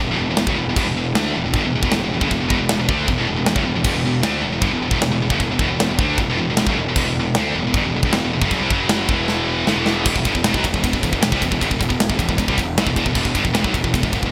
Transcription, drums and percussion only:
0.37 snare, china
0.47 kick
0.76 kick, crash, china
1.15 snare, china
1.54 kick, china
1.83 kick
1.91 snare, china
2.21 kick
2.31 kick, china
2.50 kick
2.69 snare, china
2.89 kick
3.08 kick, china
3.46 snare, china
3.56 kick
3.84 kick, china, crash
4.23 snare, china
4.62 kick, china
4.91 kick
5.02 snare, china
5.30 kick
5.40 kick, china
5.59 kick
5.80 snare, china
5.99 kick
6.18 kick, china
6.57 snare, china
6.67 kick
6.96 kick, crash, china
7.35 snare, china
7.74 kick, china
8.03 kick
8.13 snare, china
8.42 kick
8.51 kick, china
8.70 kick
8.89 snare, china
9.09 kick
9.28 snare
9.67 snare
9.86 snare
10.05 kick, crash
10.16 kick
10.25 kick, ride
10.35 kick
10.44 snare, ride
10.54 kick
10.64 kick, ride
10.74 kick
10.84 kick, ride
10.93 kick
11.03 kick, ride
11.13 kick
11.22 snare, ride
11.32 kick
11.42 kick, ride
11.52 kick
11.61 kick, ride
11.71 kick
11.81 kick, ride
11.90 kick
12.00 snare, ride
12.10 kick
12.19 kick, ride
12.29 kick
12.38 kick, ride
12.48 kick
12.58 kick, ride
12.78 snare, ride
12.87 kick
12.96 kick, ride
13.06 kick
13.15 kick, crash
13.25 kick
13.35 kick, ride
13.45 kick
13.55 snare, ride
13.64 kick
13.74 kick, ride
13.84 kick
13.94 kick, ride
14.03 kick
14.13 kick, ride
14.23 kick

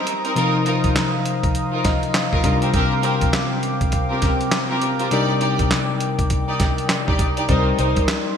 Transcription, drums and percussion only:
0.07 closed hi-hat
0.25 closed hi-hat
0.36 closed hi-hat
0.66 closed hi-hat
0.84 kick, closed hi-hat
0.96 snare, clap, closed hi-hat
1.26 closed hi-hat
1.43 kick, closed hi-hat
1.55 closed hi-hat
1.85 kick, snare, closed hi-hat
2.03 closed hi-hat
2.14 snare, clap, closed hi-hat
2.33 kick
2.44 kick, closed hi-hat
2.62 closed hi-hat
2.74 kick, closed hi-hat
3.03 closed hi-hat
3.21 kick, closed hi-hat
3.33 snare, clap, closed hi-hat
3.63 closed hi-hat
3.81 kick, closed hi-hat
3.92 kick, closed hi-hat
4.22 kick, snare, closed hi-hat
4.41 closed hi-hat
4.52 snare, clap, closed hi-hat
4.82 closed hi-hat
5.00 closed hi-hat
5.11 closed hi-hat
5.41 closed hi-hat
5.59 kick, closed hi-hat
5.71 snare, clap, closed hi-hat
6.00 closed hi-hat
6.19 kick, closed hi-hat
6.30 kick, closed hi-hat
6.60 kick, snare, closed hi-hat
6.78 closed hi-hat
6.89 snare, clap, closed hi-hat
7.08 kick
7.19 kick, closed hi-hat
7.37 closed hi-hat
7.49 kick, closed hi-hat
7.79 closed hi-hat
7.96 kick, closed hi-hat
8.08 snare, clap, closed hi-hat

